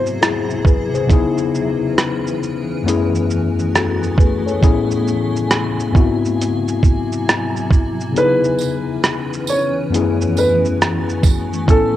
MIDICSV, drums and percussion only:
0, 0, Header, 1, 2, 480
1, 0, Start_track
1, 0, Tempo, 882353
1, 596, Time_signature, 4, 2, 24, 8
1, 6510, End_track
2, 0, Start_track
2, 0, Title_t, "Drums"
2, 34, Note_on_c, 9, 82, 47
2, 89, Note_off_c, 9, 82, 0
2, 123, Note_on_c, 9, 42, 69
2, 123, Note_on_c, 9, 82, 71
2, 124, Note_on_c, 9, 37, 110
2, 178, Note_off_c, 9, 42, 0
2, 178, Note_off_c, 9, 82, 0
2, 179, Note_off_c, 9, 37, 0
2, 274, Note_on_c, 9, 82, 39
2, 328, Note_off_c, 9, 82, 0
2, 353, Note_on_c, 9, 36, 98
2, 364, Note_on_c, 9, 82, 45
2, 407, Note_off_c, 9, 36, 0
2, 419, Note_off_c, 9, 82, 0
2, 516, Note_on_c, 9, 82, 44
2, 570, Note_off_c, 9, 82, 0
2, 596, Note_on_c, 9, 36, 121
2, 601, Note_on_c, 9, 42, 56
2, 601, Note_on_c, 9, 82, 50
2, 651, Note_off_c, 9, 36, 0
2, 655, Note_off_c, 9, 42, 0
2, 655, Note_off_c, 9, 82, 0
2, 751, Note_on_c, 9, 82, 44
2, 805, Note_off_c, 9, 82, 0
2, 843, Note_on_c, 9, 82, 45
2, 897, Note_off_c, 9, 82, 0
2, 1078, Note_on_c, 9, 37, 105
2, 1079, Note_on_c, 9, 42, 80
2, 1079, Note_on_c, 9, 82, 73
2, 1132, Note_off_c, 9, 37, 0
2, 1133, Note_off_c, 9, 42, 0
2, 1133, Note_off_c, 9, 82, 0
2, 1236, Note_on_c, 9, 82, 48
2, 1290, Note_off_c, 9, 82, 0
2, 1322, Note_on_c, 9, 82, 44
2, 1376, Note_off_c, 9, 82, 0
2, 1567, Note_on_c, 9, 42, 70
2, 1567, Note_on_c, 9, 82, 71
2, 1621, Note_off_c, 9, 42, 0
2, 1621, Note_off_c, 9, 82, 0
2, 1714, Note_on_c, 9, 82, 52
2, 1768, Note_off_c, 9, 82, 0
2, 1797, Note_on_c, 9, 82, 51
2, 1851, Note_off_c, 9, 82, 0
2, 1954, Note_on_c, 9, 82, 43
2, 2008, Note_off_c, 9, 82, 0
2, 2042, Note_on_c, 9, 42, 67
2, 2042, Note_on_c, 9, 82, 70
2, 2043, Note_on_c, 9, 37, 100
2, 2096, Note_off_c, 9, 42, 0
2, 2096, Note_off_c, 9, 82, 0
2, 2097, Note_off_c, 9, 37, 0
2, 2193, Note_on_c, 9, 82, 42
2, 2248, Note_off_c, 9, 82, 0
2, 2272, Note_on_c, 9, 36, 102
2, 2285, Note_on_c, 9, 82, 45
2, 2327, Note_off_c, 9, 36, 0
2, 2339, Note_off_c, 9, 82, 0
2, 2436, Note_on_c, 9, 82, 40
2, 2490, Note_off_c, 9, 82, 0
2, 2516, Note_on_c, 9, 36, 110
2, 2521, Note_on_c, 9, 42, 55
2, 2521, Note_on_c, 9, 82, 55
2, 2571, Note_off_c, 9, 36, 0
2, 2575, Note_off_c, 9, 42, 0
2, 2575, Note_off_c, 9, 82, 0
2, 2671, Note_on_c, 9, 82, 43
2, 2725, Note_off_c, 9, 82, 0
2, 2761, Note_on_c, 9, 82, 44
2, 2815, Note_off_c, 9, 82, 0
2, 2917, Note_on_c, 9, 82, 45
2, 2971, Note_off_c, 9, 82, 0
2, 2996, Note_on_c, 9, 37, 114
2, 2997, Note_on_c, 9, 42, 76
2, 2997, Note_on_c, 9, 82, 74
2, 3051, Note_off_c, 9, 37, 0
2, 3051, Note_off_c, 9, 42, 0
2, 3051, Note_off_c, 9, 82, 0
2, 3155, Note_on_c, 9, 82, 49
2, 3209, Note_off_c, 9, 82, 0
2, 3236, Note_on_c, 9, 36, 103
2, 3243, Note_on_c, 9, 82, 39
2, 3291, Note_off_c, 9, 36, 0
2, 3297, Note_off_c, 9, 82, 0
2, 3401, Note_on_c, 9, 82, 52
2, 3455, Note_off_c, 9, 82, 0
2, 3490, Note_on_c, 9, 42, 68
2, 3490, Note_on_c, 9, 82, 67
2, 3545, Note_off_c, 9, 42, 0
2, 3545, Note_off_c, 9, 82, 0
2, 3634, Note_on_c, 9, 82, 53
2, 3689, Note_off_c, 9, 82, 0
2, 3715, Note_on_c, 9, 36, 87
2, 3721, Note_on_c, 9, 82, 52
2, 3770, Note_off_c, 9, 36, 0
2, 3775, Note_off_c, 9, 82, 0
2, 3875, Note_on_c, 9, 82, 47
2, 3929, Note_off_c, 9, 82, 0
2, 3965, Note_on_c, 9, 42, 66
2, 3965, Note_on_c, 9, 82, 73
2, 3966, Note_on_c, 9, 37, 104
2, 4020, Note_off_c, 9, 42, 0
2, 4020, Note_off_c, 9, 82, 0
2, 4021, Note_off_c, 9, 37, 0
2, 4115, Note_on_c, 9, 82, 42
2, 4169, Note_off_c, 9, 82, 0
2, 4192, Note_on_c, 9, 36, 93
2, 4203, Note_on_c, 9, 82, 43
2, 4246, Note_off_c, 9, 36, 0
2, 4258, Note_off_c, 9, 82, 0
2, 4354, Note_on_c, 9, 82, 38
2, 4408, Note_off_c, 9, 82, 0
2, 4441, Note_on_c, 9, 42, 55
2, 4441, Note_on_c, 9, 82, 52
2, 4496, Note_off_c, 9, 42, 0
2, 4496, Note_off_c, 9, 82, 0
2, 4592, Note_on_c, 9, 82, 43
2, 4647, Note_off_c, 9, 82, 0
2, 4670, Note_on_c, 9, 54, 46
2, 4682, Note_on_c, 9, 82, 43
2, 4725, Note_off_c, 9, 54, 0
2, 4736, Note_off_c, 9, 82, 0
2, 4917, Note_on_c, 9, 37, 108
2, 4917, Note_on_c, 9, 42, 76
2, 4917, Note_on_c, 9, 82, 73
2, 4971, Note_off_c, 9, 37, 0
2, 4972, Note_off_c, 9, 42, 0
2, 4972, Note_off_c, 9, 82, 0
2, 5077, Note_on_c, 9, 82, 48
2, 5131, Note_off_c, 9, 82, 0
2, 5153, Note_on_c, 9, 54, 81
2, 5164, Note_on_c, 9, 82, 42
2, 5207, Note_off_c, 9, 54, 0
2, 5218, Note_off_c, 9, 82, 0
2, 5409, Note_on_c, 9, 42, 69
2, 5409, Note_on_c, 9, 82, 70
2, 5464, Note_off_c, 9, 42, 0
2, 5464, Note_off_c, 9, 82, 0
2, 5556, Note_on_c, 9, 82, 52
2, 5611, Note_off_c, 9, 82, 0
2, 5640, Note_on_c, 9, 54, 44
2, 5642, Note_on_c, 9, 82, 49
2, 5694, Note_off_c, 9, 54, 0
2, 5696, Note_off_c, 9, 82, 0
2, 5794, Note_on_c, 9, 82, 47
2, 5849, Note_off_c, 9, 82, 0
2, 5885, Note_on_c, 9, 42, 65
2, 5885, Note_on_c, 9, 82, 66
2, 5886, Note_on_c, 9, 37, 104
2, 5940, Note_off_c, 9, 42, 0
2, 5940, Note_off_c, 9, 82, 0
2, 5941, Note_off_c, 9, 37, 0
2, 6034, Note_on_c, 9, 82, 42
2, 6089, Note_off_c, 9, 82, 0
2, 6111, Note_on_c, 9, 36, 99
2, 6111, Note_on_c, 9, 54, 62
2, 6124, Note_on_c, 9, 82, 47
2, 6165, Note_off_c, 9, 36, 0
2, 6166, Note_off_c, 9, 54, 0
2, 6178, Note_off_c, 9, 82, 0
2, 6273, Note_on_c, 9, 82, 40
2, 6327, Note_off_c, 9, 82, 0
2, 6354, Note_on_c, 9, 36, 112
2, 6359, Note_on_c, 9, 42, 54
2, 6359, Note_on_c, 9, 82, 53
2, 6408, Note_off_c, 9, 36, 0
2, 6413, Note_off_c, 9, 42, 0
2, 6413, Note_off_c, 9, 82, 0
2, 6510, End_track
0, 0, End_of_file